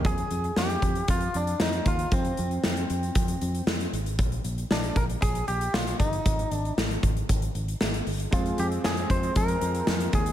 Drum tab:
HH |xxxx-xxxxxxx-xxx|xxxx-xxxxxxx-xxx|xxxx-xxxxxxx-xxx|xxxx-xxxxxxx-xox|
SD |----o-------o---|----o-------o---|----o-------o---|----o-------o---|
BD |o-----o-o-----o-|o-------o-------|o-----o-o-----o-|o-----o-o-------|

HH |xxxx-xxxxxxx-xxx|
SD |----o-------o---|
BD |o-----o-o-----o-|